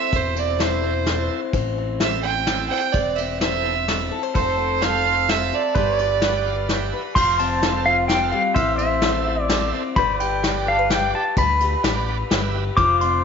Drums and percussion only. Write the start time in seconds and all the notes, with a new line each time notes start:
0.13 kick, ride
0.36 ride
0.60 snare, ride
1.06 snare, ride
1.53 kick, ride
2.00 snare, ride
2.47 snare, ride
2.94 kick, ride
3.18 ride
3.41 snare, ride
3.88 snare, ride
4.35 kick, ride
4.82 snare, ride
5.29 snare, ride
5.75 kick, ride
5.99 ride
6.22 snare, ride
6.69 snare, ride
7.16 kick, crash
7.39 ride
7.63 snare, ride
8.09 snare, ride
8.56 kick, ride
8.78 ride
9.02 snare, ride
9.49 snare, ride
9.96 kick, ride
10.20 ride
10.44 snare, ride
10.90 snare, ride
11.37 kick, ride
11.60 ride
11.84 snare, ride
12.31 snare, ride
12.77 kick, ride
13.01 ride